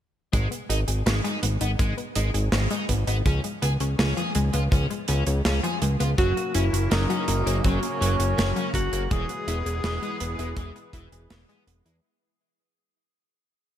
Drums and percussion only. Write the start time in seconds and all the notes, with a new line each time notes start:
0.33 kick, closed hi-hat
0.52 closed hi-hat
0.70 closed hi-hat
0.88 closed hi-hat
1.07 snare, closed hi-hat
1.25 closed hi-hat
1.43 closed hi-hat
1.61 closed hi-hat
1.79 kick, closed hi-hat
1.98 closed hi-hat
2.15 closed hi-hat
2.34 closed hi-hat
2.52 snare, closed hi-hat
2.70 closed hi-hat
2.89 kick, closed hi-hat
3.07 closed hi-hat
3.26 kick, closed hi-hat
3.44 closed hi-hat
3.62 closed hi-hat
3.80 closed hi-hat
3.99 snare, closed hi-hat
4.17 closed hi-hat
4.35 closed hi-hat
4.53 closed hi-hat
4.72 kick, closed hi-hat
4.91 closed hi-hat
5.08 closed hi-hat
5.27 closed hi-hat
5.45 snare, closed hi-hat
5.64 closed hi-hat
5.82 closed hi-hat
6.00 closed hi-hat
6.18 kick, closed hi-hat
6.37 closed hi-hat
6.54 closed hi-hat
6.74 closed hi-hat
6.91 snare, closed hi-hat
7.10 closed hi-hat
7.28 closed hi-hat
7.47 closed hi-hat
7.64 kick, closed hi-hat
7.83 closed hi-hat
8.02 closed hi-hat
8.20 closed hi-hat
8.38 snare, closed hi-hat
8.56 closed hi-hat
8.74 kick, closed hi-hat
8.93 closed hi-hat
9.11 kick, closed hi-hat
9.29 closed hi-hat
9.48 closed hi-hat
9.66 closed hi-hat
9.84 snare, closed hi-hat
10.03 closed hi-hat
10.20 closed hi-hat
10.39 closed hi-hat
10.57 kick, closed hi-hat
10.76 closed hi-hat
10.93 kick, closed hi-hat
11.12 closed hi-hat
11.30 snare, closed hi-hat
11.49 closed hi-hat
11.68 closed hi-hat
11.86 closed hi-hat